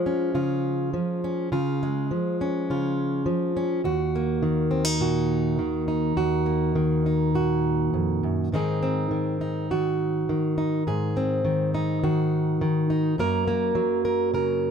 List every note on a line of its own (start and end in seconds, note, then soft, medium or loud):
0.00 0.92 F3 medium
0.00 1.80 G#3 soft
0.00 0.35 F4 medium
0.06 1.23 C#4 soft
0.35 0.93 C#3 medium
0.35 1.51 F4 medium
0.93 1.48 F3 medium
1.24 1.49 C#4 medium
1.52 2.10 C#3 medium
1.52 2.68 F4 medium
1.83 3.84 G#3 medium
2.11 3.25 F3 medium
2.41 3.55 C#4 medium
2.70 3.27 C#3 medium
2.70 3.85 F4 medium
3.26 3.80 F3 medium
3.57 3.81 C#4 medium
3.84 6.15 D#2 medium
3.84 5.01 F#4 medium
4.16 6.13 A#3 medium
4.42 5.58 D#3 medium
4.71 4.85 C4 medium
4.85 5.86 D#4 soft
5.01 5.58 A#2 medium
5.01 6.13 F#4 medium
5.59 6.74 D#3 medium
5.88 7.06 D#4 medium
6.17 7.92 D#2 medium
6.17 7.33 F#4 medium
6.46 8.48 A#3 soft
6.75 8.52 D#3 medium
7.06 8.55 D#4 soft
7.34 8.52 A#2 medium
7.34 8.49 F#4 medium
7.94 8.22 F2 medium
8.23 8.52 F#2 medium
8.52 10.83 G#2 medium
8.52 9.10 D#3 medium
8.52 8.82 C4 medium
8.52 9.41 D#4 medium
8.52 9.71 G#4 medium
8.83 10.84 C4 soft
9.11 9.70 D#3 medium
9.41 10.57 D#4 soft
9.71 10.28 D#3 medium
9.71 10.83 F#4 medium
10.29 11.43 D#3 medium
10.58 10.83 D#4 medium
10.87 13.15 G#2 medium
10.87 12.03 G#4 medium
11.17 13.16 C4 medium
11.45 12.02 D#3 medium
11.74 12.89 D#4 medium
12.04 12.60 D#3 medium
12.04 13.15 F#4 medium
12.61 13.19 D#3 medium
12.90 13.15 D#4 medium
13.18 14.71 F#2 medium
13.18 13.75 F#3 medium
13.18 13.47 A#3 medium
13.18 14.04 A#4 medium
13.47 14.71 A#3 medium
13.75 14.71 F#3 medium
14.05 14.34 A#4 medium
14.34 14.71 C#3 medium
14.34 14.71 A#4 medium